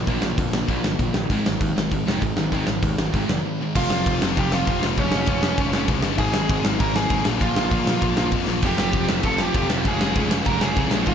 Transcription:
Already playing: A#2 F3 A#3
0.07 A#1 A#2 D3 F3 A#3, kick, open hi-hat
0.22 A#1 A#2 D3 F3, snare
0.38 F2 A#2 D3 F3, kick, open hi-hat
0.52 A#1 A#2 D3 F3, snare
0.66 A#1 A#2 D3 F3, kick, open hi-hat
0.71 A#3
0.82 G1 A#2 D3, snare
0.86 F3
0.99 A#1 A#2 D3 F3 A#3, kick, open hi-hat
1.13 A1 A#2 D3, snare
1.17 F3
1.30 G#1 G#2 D#3 G#3, kick, open hi-hat
1.46 G#1 G#2 D#3, snare
1.61 D#2 G#2 D#3, kick, open hi-hat
1.76 G#1 G#2 D#3, snare
1.91 G#1 G#2 D#3, kick, open hi-hat
2.06 F1 G#2 D#3 G#3, snare
2.22 G#1 G#2 D#3, kick, open hi-hat
2.37 G#1 G#2 D#3 G#3, snare
2.52 G#1 G#2 D#3 G#3, kick, open hi-hat
2.66 G#1 G#2 D#3, snare
2.83 D#2 G#2 D#3, kick, open hi-hat
2.98 G#1 G#2 D#3, snare
3.14 G#1 G#2 D#3 G#3, kick, open hi-hat
3.27 F1 G#2 D#3, snare
3.46 G#2 D#3
3.61 G#2 D#3 G#3
3.75 F1 F2 C3 F3 A3 C4 F4 F5, kick, crash
3.90 F1 F3 A3 C4 F4, snare
4.06 F1 F3 A3 C4 F4, kick, crash
4.22 F1 F3 A3 C4 F4, snare
4.37 F1 F3 A3 C4 F4 G4 G5, kick, crash
4.52 F3 A3 C4 F4 F5, snare
4.67 F1 F3 A3 C4 F4, kick, crash
4.83 F1 F2 C3 F3 A3 C4 F4, snare
4.97 F1 C#3 F3 G#3 C#4 F4 C#5, kick, crash
5.12 F1 C#4 F4, snare
5.16 F3 G#3
5.26 F1 F3 G#3 C#4 F4, kick, crash
5.43 F3 G#3 C#4 F4, snare
5.58 F1 F3 G#3 C#4 F4, kick, crash
5.73 F1 F3 G#3 C#4 F4, snare
5.88 C2 F3 G#3 C#4 F4, kick, crash
6.02 G1 C#3 F3 G#3 C#4 F4, snare
6.16 G#1 G#2 D#3 G#3 C4 D#4 G#4 G#5, kick, crash
6.22 G#3
6.32 G#1 G#2 D#3 G#3 C4 D#4, snare
6.48 G#1 G#2 D#3 G#3 C4 D#4, kick, crash
6.63 G#1 G#2 D#3 G#3 C4 D#4, snare
6.77 G#1 G#2 D#3 G#3 C4 D#4 A#5, kick, crash
6.82 A#4
6.93 G#2 D#3 G#3 C4 D#4 G#4 G#5, snare
7.09 G#1 G#2 D#3 G#3 C4 D#4, kick, crash
7.23 A#2 D3 F3 A#3 F4, snare
7.27 A#1 A#2 F3
7.31 A#3
7.38 A#1 A#2 D3 F3 A#3 F4, kick
7.42 F4 F5, crash
7.54 A#1 A#2 D3 F3 A#3 F4, snare
7.70 A#1 A#2 D3 F3 A#3 F4, kick, crash
7.86 A#2 D3 F3 A#3 F4, snare
8.01 A#1 A#2 D3 F3 A#3 F4, kick, crash
8.17 A#1 A#2 D3 F3 A#3 F4, snare
8.32 F2 A#2 D3 F3 A#3 F4, kick, crash
8.46 A#1 A#2 D3 F3 A#3 F4, snare
8.62 F1 F2 C3 F3 A3 C4 F4 G4, kick, splash, crash
8.67 F3 G5
8.78 F1 F2 C3 F3 A3 C4 F4, snare
8.93 F1 F2 C3 F3 A3 C4 F4, kick, crash
9.08 F1 F2 C3 F3 A3 C4 F4, snare
9.22 F1 F2 C3 F3 A3 C4 F4 A4, kick, crash
9.27 A5
9.38 F2 C3 F3 A3 C4 F4 G4 G5, snare
9.54 F1 F2 C3 F3 A3 C4 F4, kick, crash
9.69 F1 F2 C3 F3 A3 C4 F4, snare
9.83 F1 C#3 F3 G#3 C#4 F4 G#4, kick, crash
9.88 G#5
10.01 F1 C#3 F3 G#3 C#4 F4, snare
10.15 F1 C#3 F3 G#3 C#4 F4, kick, crash
10.30 C#3 F3 G#3 C#4 F4, snare
10.45 F1 C#3 F3 G#3 C#4 F4 A#4 A#5, kick, crash
10.61 F1 C#3 F3 G#3 C#4 F4 G#4 G#5, snare
10.76 C2 C#3 F3 G#3 C#4 F4, kick, crash
10.91 A#1 C#3 F3 G#3 C#4 F4, snare
11.06 G#1 G#2 D#3 G#3 C4 D#4 F4 F5, kick, crash

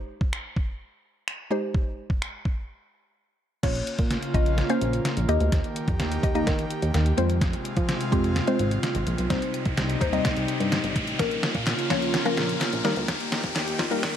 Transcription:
Already playing: G#3 D#4 G4 C5
0.21 kick
0.33 finger snap
0.56 kick
1.28 finger snap
1.51 G#3 D#4 G4 C5
1.75 kick
2.10 kick
2.22 finger snap
2.45 kick
3.63 A#1 C#3 A#3 C#4 F4 C#5, kick, snare, closed hi-hat, crash, riser
3.75 closed hi-hat
3.87 closed hi-hat
3.99 A#2, kick, closed hi-hat
4.11 snare, closed hi-hat
4.23 closed hi-hat
4.34 A#1 A#3 C#4 F4 D#5, kick, closed hi-hat
4.46 closed hi-hat
4.58 snare, closed hi-hat
4.69 A#3 C#4 F4 C5, closed hi-hat
4.81 A#1, closed hi-hat
4.93 closed hi-hat
5.05 snare, closed hi-hat
5.17 A#1, closed hi-hat
5.29 D#2 D#3 A#3 D#4 G4 D#5, closed hi-hat
5.40 D2, closed hi-hat
5.52 D#2, kick, snare, closed hi-hat
5.64 closed hi-hat
5.76 closed hi-hat
5.88 F2, kick, closed hi-hat
6.00 D#2, snare, closed hi-hat
6.12 closed hi-hat
6.23 D#2 G4 D#5, kick, closed hi-hat
6.35 A#3 D#4 G4 D#5, closed hi-hat
6.47 D#3, kick, snare, closed hi-hat
6.59 closed hi-hat
6.70 closed hi-hat
6.82 D#2, closed hi-hat
6.94 D#2, snare, closed hi-hat
7.06 closed hi-hat
7.17 F2 C3 G#3 C4 F4 C5, closed hi-hat
7.30 closed hi-hat
7.41 kick, snare, closed hi-hat
7.53 closed hi-hat
7.65 closed hi-hat
7.77 F3, kick, closed hi-hat
7.89 snare, closed hi-hat
8.01 closed hi-hat
8.12 F2 G#3 C4 F4 G4, kick, closed hi-hat
8.24 closed hi-hat
8.36 snare, closed hi-hat
8.47 G#3 C4 F4 C5, closed hi-hat
8.59 G#1, closed hi-hat
8.71 closed hi-hat
8.83 snare, closed hi-hat
8.95 G#1, closed hi-hat
9.07 A#1, closed hi-hat
9.18 B1, closed hi-hat
9.30 C2 C3 G3 C4 D#4 C5, kick, snare, closed hi-hat
9.42 closed hi-hat
9.54 closed hi-hat
9.65 C2, kick, closed hi-hat
9.77 C2, snare, closed hi-hat
9.90 closed hi-hat
10.01 D#2 D#4 C5, kick, closed hi-hat
10.13 G3 C4 D#4 D#5, closed hi-hat
10.25 C2, kick, snare, closed hi-hat
10.37 C2, closed hi-hat
10.48 closed hi-hat
10.60 G2, closed hi-hat
10.72 snare, closed hi-hat
10.84 G1, closed hi-hat
10.96 A1, kick, closed hi-hat
11.07 closed hi-hat
11.19 A#1 C#3 F3 A#3 C#4 F4 A#4, kick, snare, closed hi-hat
11.31 closed hi-hat
11.43 snare, closed hi-hat
11.55 A#2, kick, closed hi-hat
11.67 snare, clap, closed hi-hat
11.79 closed hi-hat
11.90 A#1 F3 A#3 C#4 C#5, kick, snare, closed hi-hat
12.02 closed hi-hat
12.14 snare, closed hi-hat
12.25 F3 A#3 C#4 A#4, closed hi-hat
12.37 A#1, snare, closed hi-hat
12.49 closed hi-hat
12.61 snare, clap, closed hi-hat
12.73 A#1, closed hi-hat
12.84 D#2 D#3 G3 A#3 D#4 G4 A#4, snare, closed hi-hat
12.96 D2, closed hi-hat
13.08 D#2, kick, snare, closed hi-hat
13.20 closed hi-hat
13.32 snare, closed hi-hat
13.44 F2, kick, closed hi-hat
13.56 D#2, snare, clap, closed hi-hat
13.68 closed hi-hat
13.79 D#2 D#4 F4, kick, snare, closed hi-hat
13.91 G3 A#3 D#4 A#4, closed hi-hat
14.03 D#3, kick, snare, closed hi-hat

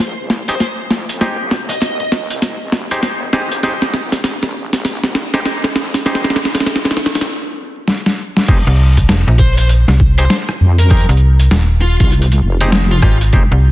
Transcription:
Already playing: A#1
0.18 C2
0.30 snare
0.48 D#4 G4 G#4 C5, closed hi-hat
0.60 snare, closed hi-hat
0.91 F2, snare
1.09 closed hi-hat
1.21 D#4 G4 G#4 C5, snare, closed hi-hat
1.40 C2
1.51 snare
1.69 D#5, closed hi-hat
1.81 D#1 D#5, snare, closed hi-hat
2.00 D#5
2.12 snare
2.30 C2, closed hi-hat
2.42 snare, closed hi-hat
2.72 F1, snare
2.91 D#4 G4 G#4 C5, closed hi-hat
3.03 snare, closed hi-hat
3.33 G#1 D#4 G4 G#4 C5, snare
3.52 closed hi-hat
3.63 F1 D#4 G4 G#4 C5, snare, closed hi-hat
3.82 C2, snare
3.94 snare
4.12 snare, closed hi-hat
4.24 F1, snare, closed hi-hat
4.43 A#1, snare
4.73 snare, closed hi-hat
4.85 snare, closed hi-hat
5.03 C2, snare
5.15 snare
5.34 D#4 G4 G#4 C5, snare, closed hi-hat
5.45 snare, closed hi-hat
5.64 snare
5.76 F2, snare
5.94 snare, closed hi-hat
6.06 D#4 G4 G#4 C5, snare, closed hi-hat
6.15 snare
6.24 C2, snare
6.30 snare
6.36 snare
6.45 snare
6.55 snare, closed hi-hat
6.60 snare
6.66 D#1, snare, closed hi-hat
6.76 snare
6.85 snare
6.91 snare
6.97 snare
7.06 snare
7.15 G#1, snare, closed hi-hat
7.21 snare
7.88 snare
8.06 snare
8.37 snare
8.48 F1 D#4 G4 G#4 C5, kick, closed hi-hat, crash
8.67 C2
8.97 kick, closed hi-hat
9.09 F1, snare, closed hi-hat
9.27 A#1
9.39 C5, kick
9.58 C5, closed hi-hat
9.69 closed hi-hat
9.88 C2, snare
10.00 kick
10.18 D#4 G4 G#4 C5, closed hi-hat
10.30 snare, closed hi-hat
10.49 cross-stick
10.61 F2
10.79 A#4, closed hi-hat
10.91 D#4 G4 G#4 A#4 C5, kick, closed hi-hat
10.97 closed hi-hat
11.01 closed hi-hat
11.09 C2, closed hi-hat
11.11 closed hi-hat
11.17 closed hi-hat
11.40 closed hi-hat
11.51 D#1, snare, closed hi-hat
11.82 F4
12.00 C2 F4, kick, closed hi-hat
12.12 closed hi-hat
12.22 closed hi-hat
12.32 closed hi-hat
12.42 F1
12.61 D#4 G4 G#4 C5, closed hi-hat
12.72 snare, closed hi-hat
12.92 F4
13.02 G#1 D#4 F4 G4 G#4 C5, kick, cross-stick
13.21 closed hi-hat
13.33 F1 D#4 G4 G#4 C5, kick, closed hi-hat
13.51 C2

